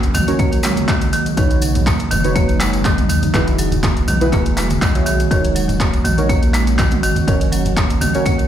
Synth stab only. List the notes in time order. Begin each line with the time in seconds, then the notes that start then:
Already playing: C#4 F#4 A#4 C#5
0.28 C#4 F#4 A#4 C#5
1.37 D#4 F#4 B4 C#5
2.24 D#4 F#4 B4 C#5
3.34 E4 F#4 G#4 B4
4.21 E4 F#4 G#4 B4
4.95 E4 F#4 G#4 C#5
5.31 D#4 F#4 A#4 C#5
6.18 D#4 F#4 A#4 C#5
7.28 C#4 F#4 A#4 C#5
8.15 C#4 F#4 A#4 C#5